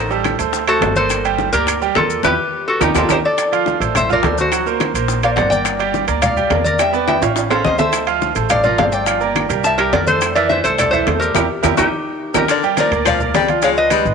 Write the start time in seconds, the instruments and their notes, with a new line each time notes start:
Already playing: upright bass A1, resonator guitar played with a steel bar A4 C5
0.10 grand piano G3 G4 A4, high bongo, high conga, maracas
0.24 high bongo, high conga, high timbale, low timbale, claves, maracas
0.39 upright bass D2, grand piano A3 A4 C5, high bongo, high conga, high timbale, maracas
0.53 high bongo, high conga, maracas
0.67 grand piano A3 A4 C5, resonator guitar played with a steel bar F#4 A4, high bongo, high conga, high timbale, claves, maracas
0.81 upright bass G1, high bongo, low bongo, high conga, high timbale, low timbale, maracas
0.95 grand piano A#3 A#4 D5, resonator guitar played with a steel bar A4 C5, high conga, maracas
1.10 high bongo, high conga, high timbale, claves, maracas
1.24 grand piano G3 G4 G5, high conga, high timbale, maracas
1.38 high bongo, high conga, low timbale, maracas
1.53 upright bass D2, grand piano A#3 A#4 D5, resonator guitar played with a steel bar G4 A#4, high timbale, maracas
1.67 high bongo, high conga, high timbale, claves, maracas
1.82 grand piano G3 G4 G5, high conga, maracas
1.95 upright bass E2, grand piano A#3 A#4 D5, resonator guitar played with a steel bar F4 A4, high bongo, low bongo, high conga, high timbale, low timbale, maracas
2.10 maracas
2.23 upright bass E2, grand piano E4 G4 B4, resonator guitar played with a steel bar G4 B4, low bongo, high conga, high timbale, claves, maracas
2.68 resonator guitar played with a steel bar F#4 A4
2.80 upright bass D#2, grand piano D#4 G4 A#4, resonator guitar played with a steel bar D#4 G4, low bongo, high conga, high timbale, claves, maracas
2.95 upright bass D#2, grand piano D#4 G4 A#4, resonator guitar played with a steel bar F4 A4, low bongo, high conga, high timbale, claves, maracas
3.09 upright bass D#2, grand piano D#4 G4 A#4, resonator guitar played with a steel bar G4 C5, low bongo, high conga, high timbale, claves, maracas
3.25 resonator guitar played with a steel bar A4 D5
3.38 high bongo, high conga, high timbale, claves, maracas
3.52 grand piano F3 F4 F5, high conga, high timbale, maracas
3.66 high bongo, high conga, low timbale, maracas
3.80 upright bass A1, grand piano A3 A4 C5, high timbale, maracas
3.95 resonator guitar played with a steel bar C5 E5, high bongo, high conga, low conga, high timbale, claves, maracas
4.09 grand piano F3 F4 F5, resonator guitar played with a steel bar A#4 D5, high conga, low conga, maracas
4.23 upright bass D2, grand piano A3 A4 C5, high bongo, low bongo, high conga, high timbale, low timbale, maracas
4.38 resonator guitar played with a steel bar F#4 C5, high conga, maracas
4.52 grand piano F#3 F#4 F#5, high bongo, high timbale, claves, maracas
4.66 grand piano A#3 A#4 C5, high bongo, high conga, maracas
4.80 high bongo, high conga, high timbale, low timbale, claves, maracas
4.94 upright bass A#1, grand piano A#3 A#4 C5, high bongo, high conga, high timbale, maracas
5.08 high bongo, high conga, maracas
5.23 grand piano A#3 A#4 C5, resonator guitar played with a steel bar D5 F5, high bongo, high conga, high timbale, claves, maracas
5.36 upright bass G1, resonator guitar played with a steel bar D5 F#5, high bongo, low bongo, high conga, high timbale, low timbale, maracas
5.50 grand piano A#3 A#4 D5, resonator guitar played with a steel bar D5 G5, high conga, maracas
5.65 high bongo, high conga, high timbale, claves, maracas
5.79 grand piano G3 G4 G5, high conga, high timbale, maracas
5.94 high bongo, high conga, low timbale, maracas
6.07 upright bass D2, grand piano A#3 A#4 D5, high timbale, maracas
6.22 resonator guitar played with a steel bar D5 F5, high bongo, high conga, low conga, high timbale, claves, maracas
6.36 grand piano G3 G4 G5, high conga, low conga, maracas
6.50 upright bass E2, grand piano A#3 A#4 D5, high bongo, low bongo, high conga, high timbale, low timbale, maracas
6.64 resonator guitar played with a steel bar A#4 D5, high conga, maracas
6.79 grand piano G3 G4 G5, resonator guitar played with a steel bar E5 G5, high bongo, high timbale, claves, maracas
6.93 grand piano B3 B4 D5, high bongo, high conga, maracas
7.07 resonator guitar played with a steel bar E5 G5, high bongo, high conga, high timbale, claves, maracas
7.21 upright bass A1, grand piano C#4 C#5 F5, high bongo, high conga, high timbale, maracas
7.36 high bongo, high conga, high timbale, maracas
7.50 grand piano C#4 C#5 F5, resonator guitar played with a steel bar A4 C5, high bongo, high conga, low timbale, claves, maracas
7.64 upright bass D2, resonator guitar played with a steel bar C5 D#5, high bongo, low bongo, high conga, maracas
7.78 grand piano A3 A4 C5, resonator guitar played with a steel bar C5 E5, high conga, low timbale, maracas
7.93 high bongo, high timbale, claves, maracas
8.07 grand piano F3 F4 F5, high conga, high timbale, maracas
8.22 high bongo, high conga, low timbale, maracas
8.35 upright bass A1, grand piano A3 A4 C5, high timbale, maracas
8.50 resonator guitar played with a steel bar D5 F5, high bongo, high conga, low conga, high timbale, claves, maracas
8.64 grand piano F3 F4 F5, resonator guitar played with a steel bar A#4 D5, high conga, low conga, maracas
8.78 upright bass G1, grand piano A3 A4 C5, resonator guitar played with a steel bar D5 F5, high bongo, low bongo, high conga, high timbale, low timbale, maracas
8.92 resonator guitar played with a steel bar D5 G5, maracas
9.06 grand piano F3 F4 F5, high bongo, high conga, high timbale, claves, maracas
9.20 grand piano A#3 A#4 D5, high bongo, high conga, maracas
9.36 high bongo, high conga, high timbale, low timbale, claves, maracas
9.49 upright bass C2, grand piano G3 G4 A#4, high bongo, high conga, high timbale, maracas
9.64 resonator guitar played with a steel bar E5 A5, high bongo, high conga, maracas
9.78 grand piano G3 G4 A#4, resonator guitar played with a steel bar G4 A#4, high bongo, high conga, high timbale, claves, maracas
9.93 upright bass F2, resonator guitar played with a steel bar A#4 D5, high bongo, low bongo, high conga, high timbale, low timbale, maracas
10.07 grand piano A3 A4 C5, resonator guitar played with a steel bar A4 C5, high conga, maracas
10.21 high bongo, high conga, high timbale, claves, maracas
10.35 grand piano E3 E4 E5, resonator guitar played with a steel bar A#4 D5, high timbale, maracas
10.49 resonator guitar played with a steel bar C5 E5, high bongo, high conga, low timbale, maracas
10.64 upright bass C2, grand piano A3 A4 C5, resonator guitar played with a steel bar A4 C5, high timbale, maracas
10.78 resonator guitar played with a steel bar A4 D5, high bongo, high conga, low conga, high timbale, claves, maracas
10.91 grand piano E3 E4 E5, resonator guitar played with a steel bar A4 C5, high conga, low conga, maracas
11.06 upright bass E2, grand piano A3 A4 C5, high bongo, low bongo, high conga, high timbale, low timbale, maracas
11.20 resonator guitar played with a steel bar G4 A#4, maracas
11.35 upright bass E2, grand piano E4 G4 A#4, low bongo, high conga, high timbale, claves, maracas
11.63 upright bass E2, grand piano E4 G4 A#4, low bongo, high conga, high timbale, claves, maracas
11.77 upright bass E2, resonator guitar played with a steel bar D#4 G4, grand piano E4 G4 A#4, low bongo, high conga, high timbale, claves, maracas
12.34 upright bass D#2, grand piano D#4 G4 A#4, resonator guitar played with a steel bar G4 A#4, low bongo, high conga, high timbale, claves, maracas
12.48 baritone saxophone D3, resonator guitar played with a steel bar A#4 D5, high bongo, high timbale, claves, maracas
12.63 grand piano G3 G4 G5, high conga, maracas
12.77 baritone saxophone F3, grand piano A#3 A#4 D5, resonator guitar played with a steel bar A#4 D5, high bongo, high conga, high timbale, low timbale, maracas
12.91 upright bass D2, grand piano A#3 A#4 D5, high timbale, maracas
13.05 baritone saxophone F3, resonator guitar played with a steel bar D5 F5, high bongo, high conga, low conga, high timbale, claves, maracas
13.20 grand piano A#3 A#4 D5, high conga, low conga, maracas
13.34 upright bass C#2, baritone saxophone G3, resonator guitar played with a steel bar D5 G5, high bongo, low bongo, high conga, high timbale, low timbale, maracas
13.48 grand piano F3 F4 F5, high conga, high timbale, maracas
13.62 grand piano F3 F4 F5, baritone saxophone G#3, resonator guitar played with a steel bar C#5 F5, high bongo, high conga, high timbale, claves, maracas
13.77 resonator guitar played with a steel bar B4 D#5, high bongo, high conga, maracas
13.90 baritone saxophone G3, grand piano G#3 G#4 B4, high bongo, high conga, high timbale, low timbale, claves, maracas
14.05 upright bass G#1, high bongo, high conga, maracas